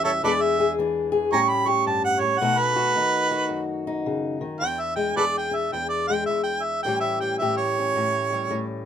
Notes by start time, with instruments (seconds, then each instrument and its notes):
Already playing: steel-string acoustic guitar E2 E3 C#4 G4
0.04 steel-string acoustic guitar G3, harmonica A4 C#5 E5
0.23 steel-string acoustic guitar E2 G#3 D4 G#4, harmonica A4 B4 D5
0.41 harmonica E5
0.60 steel-string acoustic guitar G#4
0.78 steel-string acoustic guitar E3 D4
1.12 steel-string acoustic guitar G#4
1.32 steel-string acoustic guitar A2 G3 C#4 G4, harmonica G#5 A#5 C#6
1.50 harmonica B5
1.67 steel-string acoustic guitar G4, harmonica C#6
1.86 steel-string acoustic guitar G2, harmonica A5
2.05 harmonica F#5
2.20 steel-string acoustic guitar A2, harmonica C#5
2.39 steel-string acoustic guitar B2 A3 D#4 F#4, harmonica F#5
2.59 harmonica B4
2.76 steel-string acoustic guitar F#4
2.96 steel-string acoustic guitar D#3 D#4
3.31 steel-string acoustic guitar F#4
3.49 steel-string acoustic guitar F#2
3.87 steel-string acoustic guitar D#4
4.06 steel-string acoustic guitar C#3
4.41 steel-string acoustic guitar D#3
4.61 steel-string acoustic guitar E2 D4, harmonica G5
4.80 harmonica E5
4.96 steel-string acoustic guitar G#3, harmonica G5
5.16 steel-string acoustic guitar E2 G#4, harmonica A4 B4 D5
5.38 harmonica G5
5.51 steel-string acoustic guitar D4, harmonica E5
5.73 steel-string acoustic guitar E2, harmonica G5
5.89 harmonica D5
6.08 steel-string acoustic guitar G#3, harmonica G5
6.26 steel-string acoustic guitar E2, harmonica E5
6.44 harmonica G5
6.63 harmonica E5
6.83 steel-string acoustic guitar A2 E3 G3 C#4, harmonica G5
6.88 steel-string acoustic guitar G4
7.00 harmonica E5
7.21 steel-string acoustic guitar G3, harmonica G5
7.38 steel-string acoustic guitar A2 G4, harmonica E5
7.57 harmonica C#5
7.78 steel-string acoustic guitar C#4
7.96 steel-string acoustic guitar A2
8.33 steel-string acoustic guitar G3
8.51 steel-string acoustic guitar A2